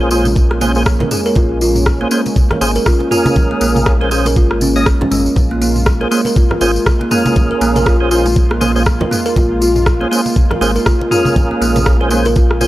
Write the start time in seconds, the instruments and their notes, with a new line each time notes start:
Already playing: sub bass A#1, analog synth pad G#3 A#3 C#4
0.01 tonewheel organ A#3 C#4 G#4 C5
0.11 tonewheel organ A#3 C#4 G#4 C5, kalimba F4, tambourine
0.25 tambourine, muted conga, high conga
0.36 kick, tambourine, high conga
0.51 kalimba A#3, cross-stick
0.61 tonewheel organ A#3 C#4 G#4 C5, kalimba A#3, tambourine, muted conga, high conga
0.75 tonewheel organ A#3 C#4 G#4 C5, tambourine
0.86 kick, cross-stick, tambourine
1.00 kalimba A#4, muted conga, high conga, low conga
1.11 kalimba G#4, mid tom, tambourine
1.26 kalimba A#4, tambourine
1.35 sub bass A#1, kalimba F4, kick, tambourine, muted conga, low conga
1.61 kalimba F4, tambourine
1.76 mid tom, tambourine
1.86 kick, cross-stick, muted conga
2.01 tonewheel organ A#3 C#4 G#4 C5, kalimba A#3
2.11 tonewheel organ A#3 C#4 G#4 C5, kalimba A#3, tambourine
2.26 tambourine, muted conga
2.36 kick, tambourine, high conga
2.51 kalimba A#4, cross-stick, low conga
2.61 sub bass G#1, tonewheel organ A#3 C#4 G#4 C5, kalimba G#4, tambourine, muted conga
2.75 kalimba A#4, tambourine
2.86 kalimba F4, kick, cross-stick, tambourine, high conga
3.00 muted conga
3.11 tonewheel organ A#3 C#4 G#4 A#4, kalimba F4, mid tom, tambourine
3.26 tambourine, high conga
3.36 sub bass A#1, kick, tambourine, muted conga, low conga
3.51 kalimba A#3
3.61 sub bass A#1, kalimba A#3, tambourine
3.76 mid tom, tambourine, high conga
3.86 kick, cross-stick, tambourine, muted conga
4.01 tonewheel organ A#3 C#4 G#4 C5, kalimba A#4
4.11 tonewheel organ A#3 C#4 G#4 C5, kalimba G#4, tambourine
4.26 kalimba A#4, tambourine, muted conga, high conga
4.36 sub bass G#1, kalimba F4, kick, tambourine, high conga
4.51 cross-stick
4.61 kalimba C#4, tambourine, muted conga, high conga
4.76 tonewheel organ A#3 C#4 G#4 D#5, tambourine
4.86 kick, cross-stick, tambourine
5.01 kalimba C#4, muted conga, high conga, low conga
5.11 sub bass G#1, kalimba G#3, mid tom, tambourine
5.26 tambourine
5.36 sub bass A#1, analog synth pad F4, kick, tambourine, muted conga, low conga
5.51 kalimba A#3
5.62 kalimba A#3, tambourine
5.76 mid tom, tambourine
5.86 kick, cross-stick, tambourine, muted conga
6.01 tonewheel organ A#3 C#4 G#4 C5, kalimba A#4
6.11 tonewheel organ A#3 C#4 G#4 C5, kalimba A#3, tambourine
6.25 kalimba A#4, tambourine, muted conga
6.36 kalimba F4, kick, tambourine, high conga
6.51 cross-stick, low conga
6.61 sub bass G#1, tonewheel organ A#3 C#4 G#4 C5, kalimba F4, tambourine, muted conga
6.76 tambourine
6.86 kick, cross-stick, tambourine, high conga
7.01 kalimba A#3, muted conga
7.11 tonewheel organ A#3 C#4 G#4 A#4, kalimba A#3, mid tom, tambourine
7.26 tambourine, high conga
7.36 sub bass A#1, kick, tambourine, muted conga, low conga
7.51 kalimba A#4
7.61 sub bass A#1, kalimba A#3, tambourine
7.76 kalimba A#4, mid tom, tambourine, high conga
7.86 kalimba F4, kick, cross-stick, tambourine, muted conga
8.00 tonewheel organ A#3 C#4 G#4 C5
8.11 tonewheel organ A#3 C#4 G#4 C5, kalimba F4, tambourine
8.26 tambourine, muted conga, high conga
8.36 kick, tambourine, high conga
8.51 kalimba A#3, cross-stick
8.61 tonewheel organ A#3 C#4 G#4 C5, kalimba A#3, tambourine, muted conga, high conga
8.76 tonewheel organ A#3 C#4 G#4 C5, tambourine
8.86 kick, cross-stick, tambourine
9.01 kalimba A#4, muted conga, high conga, low conga
9.11 kalimba A#3, mid tom, tambourine
9.26 kalimba A#4, tambourine
9.36 sub bass A#1, kalimba F4, kick, tambourine, muted conga, low conga
9.62 kalimba F4, tambourine
9.76 mid tom, tambourine
9.86 kick, cross-stick, tambourine, muted conga
10.01 tonewheel organ A#3 C#4 G#4 C5, kalimba A#3
10.11 tonewheel organ A#3 C#4 G#4 C5, kalimba A#3, tambourine
10.26 tambourine, muted conga
10.36 kick, tambourine, high conga
10.51 kalimba A#4, cross-stick, low conga
10.61 sub bass G#1, tonewheel organ A#3 C#4 G#4 C5, kalimba A#3, tambourine, muted conga
10.76 kalimba A#4, tambourine
10.86 kalimba F4, kick, cross-stick, tambourine, high conga
11.01 muted conga
11.11 tonewheel organ A#3 C#4 G#4 A#4, kalimba F4, mid tom, tambourine
11.25 tambourine, high conga
11.36 sub bass A#1, kick, tambourine, muted conga, low conga
11.51 kalimba A#3
11.61 sub bass A#1, kalimba A#3, tambourine
11.76 mid tom, tambourine, high conga
11.86 kick, cross-stick, tambourine, muted conga
12.01 tonewheel organ A#3 C#4 G#4 C5, kalimba A#4
12.11 tonewheel organ A#3 C#4 G#4 C5, kalimba A#3, tambourine
12.25 kalimba A#4, tambourine, muted conga, high conga
12.36 kalimba F4, kick, tambourine, high conga
12.51 cross-stick
12.61 tonewheel organ A#3 C#4 G#4 C5, kalimba F4, tambourine, muted conga, high conga